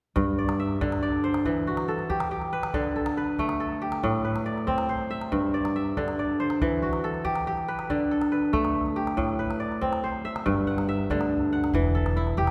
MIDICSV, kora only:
0, 0, Header, 1, 2, 480
1, 0, Start_track
1, 0, Key_signature, 1, "major"
1, 0, Tempo, 428571
1, 179, Time_signature, 12, 3, 24, 8
1, 14009, End_track
2, 0, Start_track
2, 0, Title_t, "Kora"
2, 0, Program_c, 0, 46
2, 176, Note_on_c, 0, 43, 81
2, 430, Note_on_c, 0, 74, 52
2, 666, Note_on_c, 0, 76, 62
2, 909, Note_on_c, 0, 50, 78
2, 1143, Note_off_c, 0, 74, 0
2, 1148, Note_on_c, 0, 74, 67
2, 1386, Note_on_c, 0, 72, 59
2, 1630, Note_on_c, 0, 52, 70
2, 1682, Note_off_c, 0, 43, 0
2, 1682, Note_off_c, 0, 50, 0
2, 1824, Note_off_c, 0, 76, 0
2, 1873, Note_on_c, 0, 66, 54
2, 2108, Note_on_c, 0, 69, 60
2, 2347, Note_on_c, 0, 67, 70
2, 2389, Note_off_c, 0, 74, 0
2, 2583, Note_off_c, 0, 67, 0
2, 2588, Note_on_c, 0, 67, 63
2, 2655, Note_off_c, 0, 66, 0
2, 2716, Note_off_c, 0, 72, 0
2, 2830, Note_on_c, 0, 71, 69
2, 3069, Note_on_c, 0, 50, 76
2, 3129, Note_off_c, 0, 52, 0
2, 3308, Note_off_c, 0, 69, 0
2, 3312, Note_on_c, 0, 69, 48
2, 3549, Note_off_c, 0, 71, 0
2, 3554, Note_on_c, 0, 71, 60
2, 3799, Note_on_c, 0, 57, 76
2, 4029, Note_off_c, 0, 69, 0
2, 4034, Note_on_c, 0, 69, 58
2, 4170, Note_off_c, 0, 67, 0
2, 4274, Note_on_c, 0, 67, 64
2, 4519, Note_on_c, 0, 45, 82
2, 4574, Note_off_c, 0, 50, 0
2, 4749, Note_off_c, 0, 71, 0
2, 4754, Note_on_c, 0, 71, 51
2, 4991, Note_on_c, 0, 74, 63
2, 5230, Note_on_c, 0, 60, 70
2, 5477, Note_on_c, 0, 72, 59
2, 5509, Note_off_c, 0, 69, 0
2, 5544, Note_off_c, 0, 71, 0
2, 5717, Note_on_c, 0, 76, 65
2, 5856, Note_off_c, 0, 67, 0
2, 5957, Note_on_c, 0, 43, 72
2, 6019, Note_off_c, 0, 45, 0
2, 6036, Note_off_c, 0, 57, 0
2, 6199, Note_off_c, 0, 74, 0
2, 6204, Note_on_c, 0, 74, 56
2, 6444, Note_off_c, 0, 76, 0
2, 6448, Note_on_c, 0, 76, 60
2, 6687, Note_on_c, 0, 50, 75
2, 6807, Note_off_c, 0, 72, 0
2, 6929, Note_off_c, 0, 74, 0
2, 6933, Note_on_c, 0, 74, 57
2, 7165, Note_on_c, 0, 72, 63
2, 7246, Note_off_c, 0, 60, 0
2, 7410, Note_on_c, 0, 52, 84
2, 7461, Note_off_c, 0, 43, 0
2, 7461, Note_off_c, 0, 50, 0
2, 7606, Note_off_c, 0, 76, 0
2, 7642, Note_on_c, 0, 66, 57
2, 7883, Note_on_c, 0, 69, 67
2, 8115, Note_on_c, 0, 67, 74
2, 8174, Note_off_c, 0, 74, 0
2, 8362, Note_off_c, 0, 67, 0
2, 8367, Note_on_c, 0, 67, 60
2, 8434, Note_off_c, 0, 66, 0
2, 8495, Note_off_c, 0, 72, 0
2, 8606, Note_on_c, 0, 71, 68
2, 8847, Note_on_c, 0, 50, 77
2, 8901, Note_off_c, 0, 52, 0
2, 9082, Note_off_c, 0, 69, 0
2, 9087, Note_on_c, 0, 69, 51
2, 9311, Note_off_c, 0, 71, 0
2, 9316, Note_on_c, 0, 71, 58
2, 9554, Note_on_c, 0, 57, 82
2, 9949, Note_off_c, 0, 67, 0
2, 10035, Note_on_c, 0, 67, 57
2, 10271, Note_on_c, 0, 45, 78
2, 10338, Note_off_c, 0, 50, 0
2, 10512, Note_off_c, 0, 71, 0
2, 10517, Note_on_c, 0, 71, 57
2, 10563, Note_off_c, 0, 69, 0
2, 10750, Note_on_c, 0, 74, 58
2, 10992, Note_on_c, 0, 60, 75
2, 11240, Note_on_c, 0, 72, 55
2, 11308, Note_off_c, 0, 71, 0
2, 11478, Note_on_c, 0, 76, 68
2, 11617, Note_off_c, 0, 67, 0
2, 11712, Note_on_c, 0, 43, 81
2, 11772, Note_off_c, 0, 45, 0
2, 11791, Note_off_c, 0, 57, 0
2, 11951, Note_on_c, 0, 78, 60
2, 11991, Note_off_c, 0, 74, 0
2, 12188, Note_off_c, 0, 76, 0
2, 12192, Note_on_c, 0, 76, 63
2, 12439, Note_on_c, 0, 50, 79
2, 12571, Note_off_c, 0, 72, 0
2, 12904, Note_off_c, 0, 78, 0
2, 12909, Note_on_c, 0, 78, 61
2, 13008, Note_off_c, 0, 60, 0
2, 13155, Note_on_c, 0, 52, 81
2, 13203, Note_off_c, 0, 43, 0
2, 13203, Note_off_c, 0, 50, 0
2, 13350, Note_off_c, 0, 76, 0
2, 13382, Note_on_c, 0, 69, 64
2, 13626, Note_on_c, 0, 64, 64
2, 13863, Note_on_c, 0, 67, 86
2, 13930, Note_off_c, 0, 78, 0
2, 14009, Note_off_c, 0, 52, 0
2, 14009, Note_off_c, 0, 64, 0
2, 14009, Note_off_c, 0, 67, 0
2, 14009, Note_off_c, 0, 69, 0
2, 14009, End_track
0, 0, End_of_file